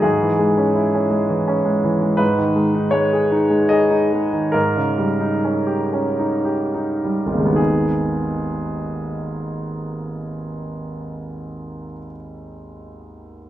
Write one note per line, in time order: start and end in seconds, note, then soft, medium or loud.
0.02 2.15 G#2 soft
0.02 1.83 G#4 medium
0.21 0.51 E3 soft
0.39 0.68 G#3 soft
0.57 0.87 C#4 soft
0.75 1.04 E4 soft
0.94 1.23 C#4 soft
1.10 1.40 G#3 soft
1.29 1.58 E3 soft
1.48 1.77 C#4 soft
1.65 1.94 G#3 soft
1.84 2.12 E3 soft
2.02 2.20 G#3 soft
2.17 4.50 G#2 soft
2.17 2.92 B4 medium
2.38 2.67 D#3 soft
2.56 2.86 G#3 soft
2.75 3.05 D#4 soft
2.91 3.23 G#3 soft
2.91 3.70 C#5 medium
3.13 3.44 G#4 soft
3.32 3.63 D#4 soft
3.50 3.83 G#3 soft
3.69 4.04 G#4 soft
3.69 4.53 D#5 medium
3.90 4.24 D#4 soft
4.13 4.46 G#3 soft
4.33 4.54 D#3 soft
4.52 7.53 G#2 soft
4.52 7.02 A#4 medium
4.76 5.11 C#3 soft
4.98 5.34 G3 soft
5.21 5.58 D#4 soft
5.45 5.83 C#4 soft
5.67 6.07 G4 soft
5.93 6.34 C#4 soft
6.19 6.62 D#4 soft
6.45 6.91 G4 soft
6.74 7.21 D#4 soft
7.04 7.48 G3 soft
7.26 11.85 G#1 soft
7.33 11.92 D#2 soft
7.33 7.58 C#3 soft
7.40 11.98 G#3 soft
7.45 12.04 B3 soft
7.52 12.11 D#4 soft
7.52 12.15 G#4 soft